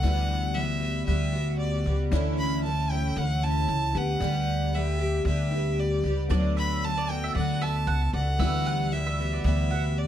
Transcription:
Already playing: violin F#5
0.01 upright bass D2, twelve-string acoustic guitar D3 E3 G3 B3 F#4, felt piano G3 B3 E4 F#4
0.06 felt piano B4
0.54 twelve-string acoustic guitar E3 G3 B3 F#4, violin E5
0.80 twelve-string acoustic guitar G3 B3 F#4
1.06 upright bass D2, twelve-string acoustic guitar E3 G3 B3 F#4, violin E5
1.33 twelve-string acoustic guitar G3 B3 F#4
1.59 violin D5
1.84 upright bass C#2, twelve-string acoustic guitar G3 B3 F#4
2.10 upright bass D2, twelve-string acoustic guitar D3 E3 A3 C#4 E4, felt piano C#4 E4 A4
2.38 violin B5
2.63 twelve-string acoustic guitar E3 A3 C#4 E4, violin A5
2.90 twelve-string acoustic guitar A3 C#4 E4, violin G5
3.16 upright bass D2, twelve-string acoustic guitar E3 A3 C#4 E4, violin F#5
3.42 twelve-string acoustic guitar A3 C#4 E4, violin A5
3.68 upright bass C#2
3.93 upright bass D2, twelve-string acoustic guitar B3 G4, felt piano D4 G4 B4
3.97 twelve-string acoustic guitar G3, violin F#5
4.20 upright bass D2, twelve-string acoustic guitar D3 G3 B3 G4
4.73 twelve-string acoustic guitar D3 G3 B3 G4, violin E5
4.99 twelve-string acoustic guitar G3 B3 G4
5.25 upright bass D2, twelve-string acoustic guitar D3 G3 B3 G4, violin E5
5.50 twelve-string acoustic guitar G3 B3 G4, felt piano D4 G4 B4
5.79 violin D5
6.04 upright bass C#2, twelve-string acoustic guitar G3 B3 G4
6.28 upright bass D2, twelve-string acoustic guitar D3 F#3 A3 B3 F#4, felt piano A3 B3 D4 F#4, mandolin D5
6.32 felt piano B4
6.57 mandolin E5, violin B5
6.82 twelve-string acoustic guitar F#3 A3 B3 F#4, violin A5
6.98 mandolin D5
7.08 twelve-string acoustic guitar A3 B3 F#4, violin G5
7.24 mandolin E5
7.35 upright bass D2, twelve-string acoustic guitar F#3 A3 B3 F#4, mandolin D5, violin F#5
7.61 twelve-string acoustic guitar A3 B3 F#4, mandolin E5, violin A5
7.87 upright bass C#2, mandolin F#5
8.13 upright bass C#2, twelve-string acoustic guitar A3 B3 F#4, mandolin D5, violin F#5
8.38 upright bass D2, twelve-string acoustic guitar D3 E3 G3 B3 F#4, felt piano G3 B3 E4 F#4 A4, mandolin E5
8.48 felt piano B4
8.66 mandolin F#5
8.92 twelve-string acoustic guitar E3 G3 B3 F#4, violin E5
9.06 mandolin E5
9.18 twelve-string acoustic guitar G3 B3 F#4
9.33 mandolin D5
9.44 upright bass D2, twelve-string acoustic guitar E3 G3 B3 F#4, violin E5
9.70 twelve-string acoustic guitar G3 B3 F#4, mandolin F#5
9.98 violin D5

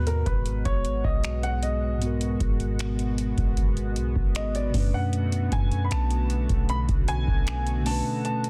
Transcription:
Already playing: 808-style bass D#2, tine electric piano G#2 G#3 B3 F#4 B4, analog synth pad B2 G#3 B3 F#4
0.07 grand piano A#4, closed hi-hat
0.26 808-style bass G#1, grand piano B4, kick, closed hi-hat
0.46 closed hi-hat
0.65 808-style bass G#1, grand piano C#5, kick, closed hi-hat
0.85 closed hi-hat
1.04 808-style bass B1, grand piano D#5, kick
1.24 finger snap, closed hi-hat
1.43 grand piano F#5, closed hi-hat
1.63 grand piano D#5, closed hi-hat
1.98 tine electric piano G#2 G#3, closed hi-hat
2.02 tine electric piano B3 F#4
2.07 tine electric piano A#4
2.21 closed hi-hat
2.40 808-style bass G#1, kick, closed hi-hat
2.60 closed hi-hat
2.79 finger snap, closed hi-hat
2.99 closed hi-hat
3.18 closed hi-hat
3.38 808-style bass G#1, kick, closed hi-hat
3.57 kick, closed hi-hat
3.77 closed hi-hat
3.96 808-style bass B1, closed hi-hat
4.16 808-style bass G#1, kick
4.35 grand piano D#5, finger snap, closed hi-hat
4.55 grand piano D5, closed hi-hat
4.70 808-style bass F#2, tine electric piano B2 A3, analog synth pad D3 A3 F#4, kick, open hi-hat
4.75 tine electric piano C#4 D4
4.80 tine electric piano B4
4.94 grand piano F#5
5.13 closed hi-hat
5.32 closed hi-hat
5.52 808-style bass F#2, grand piano G#5, kick, closed hi-hat
5.72 closed hi-hat
5.85 grand piano B5
5.91 808-style bass B1, grand piano A5, finger snap, closed hi-hat
6.11 closed hi-hat
6.30 closed hi-hat
6.49 808-style bass B1, kick, closed hi-hat
6.69 grand piano B5, closed hi-hat
6.88 808-style bass B1, kick, closed hi-hat
7.08 grand piano G#5, closed hi-hat
7.27 808-style bass B1, kick
7.47 finger snap, closed hi-hat
7.67 closed hi-hat
7.82 tine electric piano B2 A3
7.86 tine electric piano C#4 D4, grand piano A5, open hi-hat
7.91 tine electric piano B4
8.25 grand piano A5, closed hi-hat
8.44 closed hi-hat

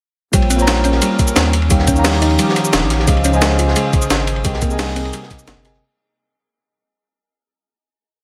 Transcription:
0.32 sub bass A#1, analog synth pad G3 C#4 A#4, synth arpeggio sound G3, tine electric piano A#3 F4 C5 C#5 G5, kick, closed hi-hat, ride, shaker
0.42 ride
0.50 synth arpeggio sound C4, closed hi-hat, ride, shaker
0.56 tine electric piano A#3 F4 C5, shaker
0.61 tine electric piano C#5 A#5
0.67 synth arpeggio sound G3, snare, closed hi-hat, ride, shaker
0.84 synth arpeggio sound C#4, closed hi-hat, ride, shaker
0.92 snare
1.02 synth arpeggio sound G3, closed hi-hat, ride, shaker
1.19 kick, closed hi-hat, ride, shaker
1.28 ride, shaker
1.36 sub bass D#2, synth arpeggio sound C4, snare, closed hi-hat, ride, shaker
1.53 analog synth pad F3 D#4 G4, closed hi-hat, ride
1.62 ride
1.69 sub bass D#2, tine electric piano D#3 D#4 C#5 F5 G5, synth arpeggio sound G3, kick, closed hi-hat, ride, shaker
1.79 snare
1.87 synth arpeggio sound C#4, kick, closed hi-hat, ride, shaker
1.93 tine electric piano D#3 D#4 C#5, shaker
1.98 tine electric piano F5 A#5
2.04 synth arpeggio sound G3, snare, closed hi-hat, open hi-hat, shaker
2.13 snare
2.22 synth arpeggio sound D#4, closed hi-hat, ride, shaker
2.31 ride
2.39 synth arpeggio sound G3, closed hi-hat, ride, shaker
2.49 snare
2.56 snare, closed hi-hat, ride, shaker
2.65 shaker
2.73 sub bass D#1, synth arpeggio sound C#4, snare, closed hi-hat, ride, shaker
2.82 sub bass A#1
2.90 snare, closed hi-hat, ride
2.99 snare
3.06 sub bass C#2, tine electric piano C#3 C#4 C5 D#5 F5, synth arpeggio sound G#3, analog synth pad G#4 C5, kick, closed hi-hat, ride, shaker
3.17 ride
3.25 synth arpeggio sound C#4, closed hi-hat, ride, shaker
3.30 tine electric piano C#3 C#4 C5, shaker
3.35 tine electric piano D#5 G#5
3.42 synth arpeggio sound G#3, snare, closed hi-hat, ride, shaker
3.59 synth arpeggio sound F4, closed hi-hat, ride, shaker
3.68 snare
3.76 synth arpeggio sound G#3, closed hi-hat, ride, shaker
3.93 kick, closed hi-hat, ride, shaker
4.02 ride, shaker
4.10 sub bass G#1, synth arpeggio sound C#4, snare, closed hi-hat, ride, shaker
4.27 closed hi-hat, ride
4.36 ride
4.43 sub bass C2, tine electric piano C3 C4 G#4 A#4 D#5 G5, synth arpeggio sound G3, analog synth pad A#3 D#4 G#4, kick, closed hi-hat, ride, shaker
4.54 snare
4.62 synth arpeggio sound A#3, kick, closed hi-hat, ride, shaker
4.68 tine electric piano C3 C4 G#4 A#4, shaker
4.72 tine electric piano D#5 G#5
4.79 synth arpeggio sound G3, snare, closed hi-hat, open hi-hat, shaker
4.88 snare
4.96 synth arpeggio sound C4, closed hi-hat, ride, shaker
5.05 ride
5.13 synth arpeggio sound G3, closed hi-hat, ride, shaker
5.23 snare
5.30 kick, snare, closed hi-hat, ride, shaker
5.39 shaker
5.48 sub bass G1, synth arpeggio sound A#3, snare, closed hi-hat, ride, shaker
5.57 sub bass G1
5.63 tine electric piano C3 C4 G#4 A#4 D#5 G#5, snare, closed hi-hat, ride
5.73 snare

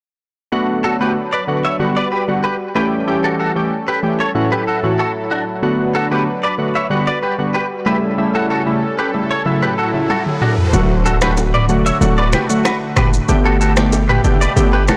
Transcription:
0.52 synth keys D3 A3 B3 F#4, analog synth pad F#3 D4 B4
0.84 clean electric guitar F#4 A4
1.00 synth keys D3 A3 B3 F#4, clean electric guitar G4 B4
1.33 clean electric guitar B4 D5
1.48 synth keys D3 A3 B3 F#4
1.65 clean electric guitar C#5 E5
1.79 synth keys D3 G3 B3 F#4, analog synth pad G3 F#4
1.97 clean electric guitar B4 D5
2.12 clean electric guitar G4 B4
2.28 synth keys D3 G3 B3 F#4
2.44 clean electric guitar G4 B4
2.75 synth keys E3 A3 C#4 G4, analog synth pad C#4 A4, clean electric guitar G4 B4
3.07 synth keys E3 A3 C#4 G4
3.24 clean electric guitar F#4 A4
3.40 clean electric guitar F#4 A4
3.56 synth keys E3 A3 C#4 G4
3.88 clean electric guitar G4 B4
4.03 synth keys E3 A3 C#4 G4
4.20 clean electric guitar A4 C#5
4.35 synth keys A2 E3 A3 C#4 F#4, analog synth pad A2 F#3 E4 A4
4.52 clean electric guitar G4 B4
4.67 clean electric guitar F#4 A4
4.83 synth keys A2 E3 A3 C#4 F#4
4.99 clean electric guitar F#4 A4
5.31 clean electric guitar D4 F#4
5.63 synth keys D3 A3 B3 F#4, analog synth pad D4 B4
5.95 clean electric guitar F#4 A4
6.11 synth keys D3 A3 B3 F#4, clean electric guitar G4 B4
6.43 clean electric guitar B4 D5
6.58 synth keys D3 A3 B3 F#4
6.75 clean electric guitar C#5 E5
6.90 synth keys D3 G3 B3 F#4, analog synth pad G3 F#4
7.07 clean electric guitar B4 D5
7.23 clean electric guitar G4 B4
7.39 synth keys D3 G3 B3 F#4
7.54 clean electric guitar G4 B4
7.86 synth keys C#3 G3 A3 E4, analog synth pad C#4 A4, clean electric guitar G4 B4
8.18 synth keys C#3 G3 A3 E4, riser
8.35 clean electric guitar F#4 A4
8.50 clean electric guitar F#4 A4
8.66 synth keys C#3 G3 A3 E4
8.99 clean electric guitar G4 B4
9.14 synth keys C#3 G3 A3 E4
9.31 clean electric guitar A4 C#5
9.45 analog synth pad A2 F#3 E4, synth keys C#3 F#3 A3 E4
9.63 clean electric guitar G4 B4
9.78 clean electric guitar F#4 A4
9.94 synth keys C#3 F#3 A3 E4
10.10 clean electric guitar F#4 A4, high tom
10.26 mid tom
10.41 clean electric guitar D4 F#4, mid tom
10.58 floor tom
10.73 808-style bass D1, synth keys D3 F#3 A3 F#4, analog synth pad D3 A3 F#4, impact, low conga, shaker
11.06 clean electric guitar F#4 A4, shaker
11.21 synth keys D3 F#3 A3 F#4, clean electric guitar G4 B4, finger snap, cross-stick, low bongo, shaker
11.37 high bongo, shaker
11.54 clean electric guitar B4 D5, mid tom
11.69 808-style bass E1, synth keys D3 F#3 A3 F#4, shaker
11.86 clean electric guitar C#5 E5, shaker
12.01 808-style bass D1, synth keys D3 F#3 A3 F#4, low conga, shaker
12.18 clean electric guitar B4 D5
12.32 clean electric guitar G4 B4, finger snap, cross-stick, low bongo, low conga, shaker
12.49 synth keys D3 F#3 A3 F#4, shaker
12.65 clean electric guitar F#4 B4, finger snap, cross-stick, high bongo, low bongo, shaker
12.96 808-style bass F#1, clean electric guitar G4 B4, finger snap, cross-stick, mid tom, shaker
13.14 shaker
13.28 808-style bass G1, analog synth pad B2 G4, synth keys D3 A3 B3 G4, low conga, shaker
13.45 clean electric guitar F#4 A4
13.61 clean electric guitar F#4 A4, shaker
13.77 synth keys D3 A3 B3 G4, finger snap, cross-stick, low bongo, shaker
13.92 high bongo, shaker
14.09 clean electric guitar G4 B4, mid tom
14.24 808-style bass F#1, synth keys D3 A3 B3 G4, shaker
14.41 clean electric guitar B4 D5, shaker
14.56 808-style bass G1, synth keys D3 A3 B3 G4, low conga, shaker
14.73 clean electric guitar G4 B4
14.88 clean electric guitar F#4 A4, finger snap, cross-stick, low bongo, low conga, shaker

